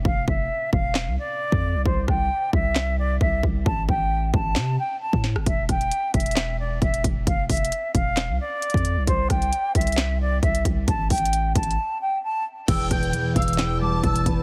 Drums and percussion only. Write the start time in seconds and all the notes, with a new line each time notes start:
0.05 kick
0.28 kick
0.73 kick
0.95 snare, clap
1.52 kick
1.86 kick
2.08 kick, cross-stick
2.53 kick
2.75 snare, clap
3.21 kick
3.43 kick
3.66 kick
3.89 kick
4.34 kick
4.56 snare, clap
5.13 kick
5.24 snare
5.36 cross-stick
5.46 kick, closed hi-hat
5.69 kick, cross-stick, closed hi-hat
5.81 closed hi-hat
5.91 closed hi-hat
6.14 kick, closed hi-hat
6.20 closed hi-hat
6.26 closed hi-hat
6.31 closed hi-hat
6.36 snare, clap, closed hi-hat
6.82 kick, closed hi-hat
6.94 closed hi-hat
7.04 kick, closed hi-hat
7.27 kick, closed hi-hat
7.50 kick, closed hi-hat, open hi-hat
7.57 closed hi-hat
7.65 closed hi-hat
7.72 closed hi-hat
7.95 kick, closed hi-hat
8.17 snare, clap, closed hi-hat
8.62 closed hi-hat
8.70 closed hi-hat
8.74 kick, closed hi-hat
8.85 closed hi-hat
9.07 kick, closed hi-hat
9.30 kick, cross-stick, closed hi-hat
9.42 closed hi-hat
9.53 closed hi-hat
9.75 kick, closed hi-hat
9.81 closed hi-hat
9.87 closed hi-hat
9.92 closed hi-hat
9.97 snare, clap, closed hi-hat
10.43 kick, closed hi-hat
10.55 closed hi-hat
10.65 kick, closed hi-hat
10.88 kick, closed hi-hat
11.10 kick, closed hi-hat, open hi-hat
11.18 closed hi-hat
11.25 closed hi-hat
11.33 closed hi-hat
11.55 kick, closed hi-hat
11.63 closed hi-hat
11.71 closed hi-hat
12.68 kick, closed hi-hat, crash
12.91 kick, cross-stick, closed hi-hat
13.03 closed hi-hat
13.13 closed hi-hat
13.36 kick, closed hi-hat
13.42 closed hi-hat
13.48 closed hi-hat
13.53 closed hi-hat
13.58 snare, clap, closed hi-hat
14.04 kick, closed hi-hat
14.16 closed hi-hat
14.26 kick, closed hi-hat